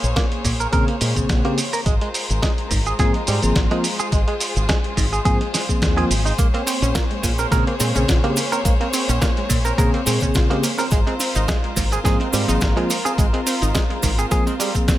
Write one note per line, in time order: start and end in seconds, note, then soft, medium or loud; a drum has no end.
0.00 0.12 A#1 medium
0.00 1.82 A#3 medium
0.00 1.82 G#4 medium
0.00 1.82 C5 medium
0.00 1.82 C#5 medium
0.00 closed hi-hat soft
0.00 shaker soft
0.16 0.24 A#3 loud
0.16 kick loud
0.16 snare loud
0.16 closed hi-hat medium
0.16 shaker soft
0.32 closed hi-hat soft
0.44 0.65 A#1 loud
0.44 0.52 A#2 medium
0.44 kick medium
0.44 open hi-hat loud
0.44 shaker medium
0.60 0.66 A#4 medium
0.60 closed hi-hat soft
0.60 shaker soft
0.72 0.83 A#2 medium
0.72 0.87 C#3 loud
0.72 0.87 A#3 medium
0.72 0.87 C4 medium
0.72 0.87 G#4 loud
0.72 0.84 A#4 loud
0.72 kick loud
0.72 closed hi-hat medium
0.72 shaker soft
0.88 0.95 A#3 medium
0.88 closed hi-hat soft
1.01 1.12 A#2 loud
1.01 1.13 G#3 loud
1.01 open hi-hat loud
1.01 shaker medium
1.15 1.25 A#1 loud
1.15 1.41 C#3 medium
1.15 1.41 A#3 medium
1.15 1.41 C4 medium
1.15 1.41 G#4 medium
1.15 kick medium
1.15 closed hi-hat soft
1.15 shaker soft
1.29 1.40 A#1 loud
1.29 kick loud
1.29 snare loud
1.29 closed hi-hat medium
1.29 shaker soft
1.44 1.57 C#3 medium
1.44 1.57 A#3 medium
1.44 1.51 A#3 loud
1.44 1.57 C4 medium
1.44 1.57 G4 loud
1.44 closed hi-hat soft
1.58 open hi-hat loud
1.58 shaker medium
1.73 1.80 A#4 medium
1.73 open hi-hat medium
1.73 shaker soft
1.86 1.97 G#1 loud
1.86 1.94 G#3 medium
1.86 6.35 G#3 medium
1.86 6.35 F4 medium
1.86 4.10 A#4 medium
1.86 14.98 C5 medium
1.86 kick loud
1.86 closed hi-hat medium
1.86 shaker soft
2.01 2.08 G#3 medium
2.01 closed hi-hat soft
2.14 open hi-hat loud
2.14 shaker medium
2.30 2.39 G#1 loud
2.30 closed hi-hat soft
2.30 shaker soft
2.42 2.50 G#3 loud
2.42 kick loud
2.42 snare loud
2.42 closed hi-hat medium
2.42 shaker soft
2.58 closed hi-hat soft
2.71 2.91 G#1 loud
2.71 2.79 G#2 medium
2.71 kick medium
2.71 open hi-hat loud
2.71 shaker medium
2.86 2.93 G#4 medium
2.86 closed hi-hat soft
2.86 shaker soft
2.99 3.10 G#2 medium
2.99 3.14 F3 loud
2.99 3.14 A#3 medium
2.99 3.14 C4 medium
2.99 3.11 G#4 loud
2.99 3.14 G#4 loud
2.99 kick loud
2.99 snare medium
2.99 closed hi-hat medium
2.99 shaker soft
3.14 3.21 G#3 medium
3.14 closed hi-hat soft
3.27 3.38 G#2 medium
3.27 3.39 G3 loud
3.27 open hi-hat loud
3.27 shaker medium
3.42 3.52 G#1 medium
3.42 3.67 F3 medium
3.42 3.67 A#3 medium
3.42 3.68 C4 medium
3.42 3.68 G#4 medium
3.42 closed hi-hat soft
3.42 shaker soft
3.56 3.66 G#1 loud
3.56 kick loud
3.56 snare loud
3.56 closed hi-hat medium
3.56 shaker soft
3.71 3.83 F3 loud
3.71 3.78 G#3 loud
3.71 3.83 A#3 medium
3.71 3.84 C4 medium
3.71 3.84 F4 loud
3.71 closed hi-hat soft
3.84 open hi-hat loud
3.84 shaker medium
3.99 4.06 G#4 medium
3.99 closed hi-hat soft
3.99 shaker medium
4.12 4.23 G#1 medium
4.12 4.20 G#3 medium
4.12 10.88 G#4 medium
4.12 kick loud
4.12 closed hi-hat medium
4.12 shaker soft
4.28 4.34 G#3 medium
4.28 closed hi-hat soft
4.40 open hi-hat loud
4.40 shaker medium
4.56 4.65 G#1 loud
4.56 closed hi-hat soft
4.56 shaker soft
4.69 4.77 G#3 loud
4.69 kick loud
4.69 snare loud
4.69 closed hi-hat medium
4.69 shaker soft
4.84 closed hi-hat soft
4.97 5.18 G#1 loud
4.97 5.05 G#2 loud
4.97 kick medium
4.97 open hi-hat loud
4.97 shaker medium
5.13 5.19 G#4 medium
5.13 closed hi-hat soft
5.13 shaker soft
5.25 5.36 G#2 medium
5.25 5.40 F3 loud
5.25 5.40 A#3 medium
5.25 5.40 C4 medium
5.25 5.37 G#4 loud
5.25 5.40 G#4 loud
5.25 kick loud
5.25 closed hi-hat medium
5.25 shaker soft
5.41 5.47 G#3 medium
5.41 closed hi-hat soft
5.54 5.61 G#3 medium
5.54 snare medium
5.54 open hi-hat loud
5.54 shaker medium
5.69 5.94 F3 medium
5.69 5.94 A#3 medium
5.69 5.94 C4 medium
5.69 5.94 G#4 medium
5.69 muted fingered electric bass stroke soft
5.69 kick medium
5.69 closed hi-hat soft
5.69 shaker soft
5.82 6.02 D#2 loud
5.82 kick loud
5.82 snare loud
5.82 closed hi-hat medium
5.82 shaker soft
5.97 6.09 F3 loud
5.97 6.09 A#3 medium
5.97 6.10 C4 medium
5.97 6.10 F4 loud
5.97 6.04 G#4 medium
5.97 closed hi-hat soft
6.10 6.31 G#1 medium
6.10 open hi-hat loud
6.10 shaker medium
6.25 6.32 D#4 medium
6.25 open hi-hat medium
6.25 shaker soft
6.38 6.49 A#1 loud
6.38 6.43 G#3 loud
6.38 6.46 A#3 medium
6.38 10.88 A#3 medium
6.38 10.87 C#5 medium
6.38 kick loud
6.38 closed hi-hat medium
6.38 cabasa medium
6.38 shaker soft
6.54 6.61 A#3 medium
6.54 6.60 C4 loud
6.54 closed hi-hat soft
6.67 6.71 C4 loud
6.67 open hi-hat loud
6.67 cabasa medium
6.67 shaker medium
6.82 6.91 A#1 medium
6.82 6.86 C#4 loud
6.82 closed hi-hat soft
6.82 cabasa soft
6.82 shaker soft
6.95 7.03 A#3 loud
6.95 7.06 F4 loud
6.95 kick loud
6.95 snare loud
6.95 closed hi-hat medium
6.95 cabasa medium
6.95 shaker soft
7.11 7.20 G#3 medium
7.11 closed hi-hat soft
7.23 7.44 A#1 medium
7.23 7.31 A#2 medium
7.23 7.31 A#3 medium
7.23 kick medium
7.23 open hi-hat loud
7.23 cabasa medium
7.23 shaker medium
7.38 7.43 C4 medium
7.38 7.45 A#4 medium
7.38 closed hi-hat soft
7.38 cabasa soft
7.38 shaker soft
7.51 7.63 A#2 medium
7.51 7.66 C#3 loud
7.51 7.56 G#3 loud
7.51 7.66 A#3 medium
7.51 7.66 C4 loud
7.51 7.67 G#4 loud
7.51 7.63 A#4 loud
7.51 kick loud
7.51 snare medium
7.51 closed hi-hat medium
7.51 cabasa medium
7.51 shaker soft
7.67 7.74 A#3 medium
7.67 7.74 C4 loud
7.67 closed hi-hat soft
7.80 7.91 A#2 loud
7.80 7.92 G#3 loud
7.80 7.85 C4 loud
7.80 open hi-hat loud
7.80 cabasa loud
7.80 shaker medium
7.95 8.05 A#1 medium
7.95 8.20 C#3 medium
7.95 8.20 A#3 medium
7.95 8.20 C4 medium
7.95 7.99 C#4 loud
7.95 8.20 G#4 medium
7.95 closed hi-hat soft
7.95 cabasa soft
7.95 shaker soft
8.08 8.19 A#1 medium
8.08 8.20 F4 loud
8.08 kick loud
8.08 snare loud
8.08 closed hi-hat medium
8.08 cabasa medium
8.08 shaker soft
8.24 8.36 C#3 loud
8.24 8.33 G#3 medium
8.24 8.30 A#3 loud
8.24 8.36 A#3 medium
8.24 8.36 C4 medium
8.24 8.36 G4 loud
8.24 closed hi-hat soft
8.36 8.44 A#3 medium
8.36 open hi-hat loud
8.36 cabasa medium
8.36 shaker medium
8.52 8.56 C4 medium
8.52 8.59 A#4 medium
8.52 closed hi-hat soft
8.52 cabasa soft
8.52 shaker soft
8.65 8.76 A#1 loud
8.65 8.69 G#3 loud
8.65 8.73 A#3 medium
8.65 kick loud
8.65 closed hi-hat medium
8.65 cabasa medium
8.65 shaker soft
8.80 8.87 A#3 medium
8.80 8.87 C4 medium
8.80 closed hi-hat soft
8.93 8.98 C4 loud
8.93 open hi-hat loud
8.93 cabasa medium
8.93 shaker medium
9.09 9.18 A#1 loud
9.09 9.13 C#4 loud
9.09 closed hi-hat soft
9.09 cabasa soft
9.09 shaker soft
9.22 9.29 A#3 loud
9.22 9.33 F4 loud
9.22 kick loud
9.22 snare loud
9.22 closed hi-hat medium
9.22 cabasa medium
9.22 shaker soft
9.37 9.47 G#3 medium
9.37 closed hi-hat soft
9.49 9.70 A#1 medium
9.49 9.57 A#2 loud
9.49 9.57 A#3 medium
9.49 kick medium
9.49 open hi-hat loud
9.49 cabasa medium
9.49 shaker medium
9.65 9.69 C4 medium
9.65 9.72 A#4 medium
9.65 closed hi-hat soft
9.65 cabasa soft
9.65 shaker soft
9.78 9.89 A#2 medium
9.78 9.93 C#3 loud
9.78 9.83 G#3 loud
9.78 9.93 A#3 loud
9.78 9.93 C4 medium
9.78 9.93 G#4 loud
9.78 9.90 A#4 loud
9.78 kick loud
9.78 closed hi-hat medium
9.78 cabasa medium
9.78 shaker soft
9.94 10.00 A#3 medium
9.94 10.00 C4 loud
9.94 closed hi-hat soft
10.06 10.17 A#2 medium
10.06 10.18 G#3 loud
10.06 10.11 C4 loud
10.06 open hi-hat loud
10.06 cabasa loud
10.06 shaker medium
10.20 10.31 A#1 loud
10.20 10.47 C#3 medium
10.20 10.47 A#3 medium
10.20 10.47 C4 medium
10.20 10.26 C#4 loud
10.20 10.47 G#4 medium
10.20 kick medium
10.20 closed hi-hat soft
10.20 cabasa soft
10.20 shaker soft
10.34 10.46 A#1 medium
10.34 10.46 F4 loud
10.34 kick loud
10.34 snare loud
10.34 closed hi-hat medium
10.34 cabasa medium
10.34 shaker soft
10.50 10.62 C#3 loud
10.50 10.60 G#3 medium
10.50 10.62 A#3 medium
10.50 10.57 A#3 loud
10.50 10.63 C4 medium
10.50 10.63 G4 loud
10.50 closed hi-hat soft
10.63 10.71 A#3 medium
10.63 open hi-hat loud
10.63 cabasa medium
10.63 shaker medium
10.78 10.83 C4 medium
10.78 10.85 A#4 medium
10.78 open hi-hat medium
10.78 cabasa soft
10.78 shaker soft
10.91 11.02 G#1 medium
10.91 10.99 G#3 medium
10.91 10.96 G#3 loud
10.91 14.98 F4 medium
10.91 14.98 A#4 medium
10.91 kick loud
10.91 closed hi-hat medium
10.91 cabasa medium
10.91 shaker soft
11.07 11.13 G#3 medium
11.07 11.13 C4 loud
11.07 closed hi-hat soft
11.20 11.24 C4 loud
11.20 open hi-hat loud
11.20 cabasa loud
11.20 shaker medium
11.35 11.44 G#1 loud
11.35 11.39 D#4 loud
11.35 closed hi-hat soft
11.35 cabasa soft
11.35 shaker soft
11.48 11.56 G#3 loud
11.48 11.59 F4 loud
11.48 kick loud
11.48 snare loud
11.48 closed hi-hat medium
11.48 cabasa medium
11.48 shaker soft
11.64 11.73 G#3 medium
11.64 closed hi-hat soft
11.76 11.97 G#1 loud
11.76 11.84 G#2 loud
11.76 11.84 A#3 medium
11.76 kick medium
11.76 open hi-hat loud
11.76 cabasa medium
11.76 shaker medium
11.92 11.96 C4 medium
11.92 11.99 G#4 medium
11.92 closed hi-hat soft
11.92 cabasa soft
11.92 shaker soft
12.04 12.16 G#2 medium
12.04 12.19 F3 loud
12.04 12.09 G#3 loud
12.04 12.19 A#3 medium
12.04 12.19 C4 loud
12.04 12.20 G#4 loud
12.04 12.17 G#4 loud
12.04 kick loud
12.04 snare medium
12.04 closed hi-hat medium
12.04 cabasa medium
12.04 shaker soft
12.20 12.27 G#3 medium
12.20 12.26 C4 loud
12.20 closed hi-hat soft
12.33 12.44 G#2 loud
12.33 12.45 G3 loud
12.33 12.37 C4 loud
12.33 open hi-hat loud
12.33 cabasa loud
12.33 shaker medium
12.48 12.58 G#1 loud
12.48 12.73 F3 medium
12.48 12.73 A#3 medium
12.48 12.73 C4 medium
12.48 12.52 D#4 loud
12.48 12.73 G#4 medium
12.48 closed hi-hat soft
12.48 cabasa soft
12.48 shaker soft
12.61 12.72 G#1 loud
12.61 12.72 F4 loud
12.61 kick loud
12.61 snare loud
12.61 closed hi-hat medium
12.61 cabasa medium
12.61 shaker soft
12.76 12.89 F3 loud
12.76 12.83 G#3 loud
12.76 12.86 G#3 medium
12.76 12.89 A#3 medium
12.76 12.89 C4 medium
12.76 12.89 F4 loud
12.76 closed hi-hat soft
12.90 12.97 A#3 medium
12.90 open hi-hat loud
12.90 cabasa medium
12.90 shaker medium
13.05 13.09 C4 medium
13.05 13.12 G#4 medium
13.05 closed hi-hat soft
13.05 cabasa soft
13.05 shaker soft
13.18 13.29 G#1 loud
13.18 13.26 G#3 medium
13.18 13.23 G#3 loud
13.18 kick loud
13.18 closed hi-hat medium
13.18 cabasa medium
13.18 shaker soft
13.33 13.40 G#3 medium
13.33 13.40 C4 loud
13.33 closed hi-hat soft
13.47 13.51 C4 loud
13.47 open hi-hat loud
13.47 cabasa loud
13.47 shaker medium
13.62 13.71 G#1 loud
13.62 13.66 D#4 loud
13.62 closed hi-hat soft
13.62 cabasa soft
13.62 shaker soft
13.75 13.82 G#3 loud
13.75 13.86 F4 loud
13.75 kick loud
13.75 snare loud
13.75 closed hi-hat medium
13.75 cabasa medium
13.75 shaker soft
13.90 13.99 G#3 medium
13.90 closed hi-hat soft
14.03 14.23 G#1 medium
14.03 14.11 G#2 loud
14.03 14.10 A#3 medium
14.03 kick medium
14.03 open hi-hat loud
14.03 cabasa medium
14.03 shaker medium
14.18 14.22 C4 medium
14.18 14.25 G#4 medium
14.18 closed hi-hat soft
14.18 cabasa soft
14.18 shaker soft
14.31 14.46 F3 loud
14.31 14.36 G#3 loud
14.31 14.46 A#3 loud
14.31 14.46 C4 loud
14.31 14.43 G#4 loud
14.31 14.46 G#4 loud
14.31 kick loud
14.31 closed hi-hat medium
14.31 cabasa medium
14.31 shaker soft
14.47 14.53 G#3 medium
14.47 14.53 C4 loud
14.47 closed hi-hat soft
14.47 cabasa soft
14.60 14.71 G3 medium
14.60 14.67 G#3 medium
14.60 open hi-hat loud
14.60 cabasa loud
14.60 shaker medium
14.74 14.98 F3 medium
14.74 14.98 A#3 medium
14.74 14.98 C4 medium
14.74 14.81 C4 medium
14.74 14.98 G#4 medium
14.74 kick medium
14.74 closed hi-hat soft
14.74 cabasa soft
14.74 shaker soft
14.88 14.95 C4 medium
14.88 kick loud
14.88 snare loud
14.88 closed hi-hat medium
14.88 cabasa medium
14.88 shaker soft